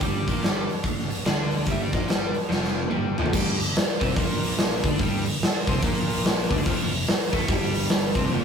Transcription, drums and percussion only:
0.01 kick, open hi-hat
0.28 kick, open hi-hat
0.43 snare, open hi-hat
0.69 open hi-hat
0.83 kick, open hi-hat
0.99 snare
1.11 open hi-hat
1.24 snare, open hi-hat
1.51 open hi-hat
1.66 kick, open hi-hat
1.93 kick, open hi-hat
2.08 snare, open hi-hat
2.34 open hi-hat
2.51 snare
2.64 snare
2.83 high tom
2.91 mid tom
3.18 floor tom
3.26 floor tom
3.33 kick, crash
3.60 open hi-hat
3.75 snare, open hi-hat
4.01 kick, open hi-hat
4.16 kick, open hi-hat
4.43 open hi-hat
4.57 snare, open hi-hat
4.83 kick, open hi-hat
4.99 kick, open hi-hat
5.25 open hi-hat
5.41 snare, open hi-hat
5.67 kick, open hi-hat
5.82 kick, open hi-hat
6.10 open hi-hat
6.24 snare, open hi-hat
6.51 kick, open hi-hat
6.66 kick, open hi-hat
6.93 open hi-hat
7.07 snare, open hi-hat
7.33 kick, open hi-hat
7.48 kick, open hi-hat
7.75 open hi-hat
7.88 snare, open hi-hat
8.15 kick, open hi-hat
8.30 high tom

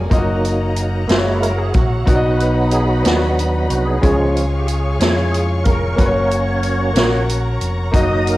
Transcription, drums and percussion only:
0.11 kick, closed hi-hat
0.45 closed hi-hat
0.76 closed hi-hat
1.09 snare, closed hi-hat
1.43 closed hi-hat
1.74 kick, closed hi-hat
2.07 kick, closed hi-hat
2.40 closed hi-hat
2.71 closed hi-hat
3.05 snare, closed hi-hat
3.39 closed hi-hat
3.70 closed hi-hat
4.03 kick, closed hi-hat
4.37 closed hi-hat
4.68 closed hi-hat
5.00 snare, closed hi-hat
5.34 closed hi-hat
5.65 kick, closed hi-hat
5.98 kick, closed hi-hat
6.31 closed hi-hat
6.63 closed hi-hat
6.96 snare, closed hi-hat
7.29 closed hi-hat
7.61 closed hi-hat
7.94 kick, closed hi-hat
8.27 closed hi-hat

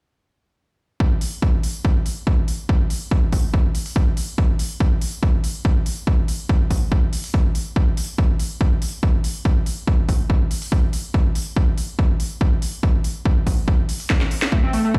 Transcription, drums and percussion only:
1.00 kick
1.21 open hi-hat
1.42 kick
1.63 open hi-hat
1.85 kick
2.06 open hi-hat
2.27 kick
2.48 open hi-hat
2.69 kick
2.90 open hi-hat
3.11 kick
3.32 kick, open hi-hat
3.54 kick
3.75 open hi-hat
3.86 open hi-hat
3.96 kick
4.17 open hi-hat
4.38 kick
4.59 open hi-hat
4.80 kick
5.02 open hi-hat
5.23 kick
5.44 open hi-hat
5.65 kick
5.86 open hi-hat
6.07 kick
6.28 open hi-hat
6.49 kick
6.71 kick, open hi-hat
6.92 kick
7.13 open hi-hat
7.24 open hi-hat
7.34 kick
7.55 open hi-hat
7.76 kick
7.97 open hi-hat
8.18 kick
8.40 open hi-hat
8.61 kick
8.82 open hi-hat
9.03 kick
9.24 open hi-hat
9.45 kick
9.66 open hi-hat
9.87 kick
10.09 kick, open hi-hat
10.30 kick
10.51 open hi-hat
10.62 open hi-hat
10.72 kick
10.93 open hi-hat
11.14 kick
11.35 open hi-hat
11.56 kick
11.78 open hi-hat
11.99 kick
12.20 open hi-hat
12.41 kick
12.62 open hi-hat
12.83 kick
13.04 open hi-hat
13.25 kick
13.47 kick, open hi-hat
13.68 kick
13.89 open hi-hat
14.00 open hi-hat
14.10 kick, snare
14.21 snare
14.31 open hi-hat
14.42 snare
14.52 kick
14.73 open hi-hat
14.94 kick

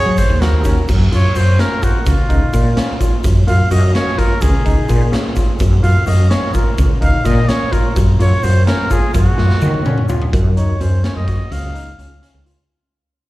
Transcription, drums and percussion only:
0.17 kick, snare, closed hi-hat, shaker
0.41 snare, closed hi-hat, shaker
0.64 kick, snare, closed hi-hat, shaker
0.88 kick, crash, shaker
1.12 closed hi-hat
1.35 closed hi-hat, shaker
1.59 snare, closed hi-hat
1.83 kick, closed hi-hat, shaker
2.06 kick, closed hi-hat, shaker
2.30 kick, closed hi-hat
2.53 kick, closed hi-hat, shaker
2.77 snare, closed hi-hat
3.01 kick, closed hi-hat, shaker
3.24 kick, closed hi-hat, shaker
3.48 closed hi-hat
3.71 closed hi-hat, shaker
3.95 snare, closed hi-hat
4.19 kick, snare, closed hi-hat
4.41 kick, closed hi-hat, shaker
4.66 kick, closed hi-hat
4.89 kick, closed hi-hat, shaker
5.12 snare, closed hi-hat, shaker
5.36 kick, closed hi-hat, shaker
5.59 kick, closed hi-hat, shaker
5.84 closed hi-hat
6.06 closed hi-hat, shaker
6.31 snare, closed hi-hat
6.54 kick, closed hi-hat, shaker
6.78 kick, closed hi-hat, shaker
7.02 kick, closed hi-hat
7.25 kick, snare, closed hi-hat, shaker
7.49 snare, closed hi-hat
7.73 kick, closed hi-hat
7.96 kick, closed hi-hat, shaker
8.20 closed hi-hat
8.43 closed hi-hat, shaker
8.67 snare, closed hi-hat
8.90 kick, closed hi-hat, shaker
9.14 kick, closed hi-hat, shaker
9.38 snare
9.50 snare
9.61 high tom, shaker
9.74 high tom
9.85 mid tom, shaker
9.98 mid tom
10.09 floor tom, shaker
10.22 floor tom
10.33 kick, closed hi-hat
10.57 closed hi-hat
10.81 closed hi-hat
11.04 snare, closed hi-hat
11.28 kick, snare, closed hi-hat
11.52 closed hi-hat
11.75 closed hi-hat
11.99 closed hi-hat
12.23 closed hi-hat
12.46 closed hi-hat

